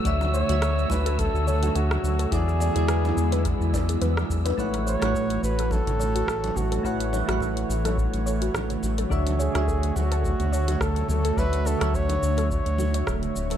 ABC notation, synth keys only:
X:1
M:4/4
L:1/16
Q:"Swing 16ths" 1/4=106
K:A
V:1 name="Synth keys"
[D,DFce]3 [D,DFce]12- [D,DFce] | [E,EFGd]3 [E,EFGd]12- [E,EFGd] | [A,EBcf]3 [A,EBcf]12- [A,EBcf] | [A,EBcf]3 [A,EBcf]12- [A,EBcf] |
[D,DFce]3 [D,DFce]12- [D,DFce] | [D,DFce]3 [D,DFce]12- [D,DFce] |]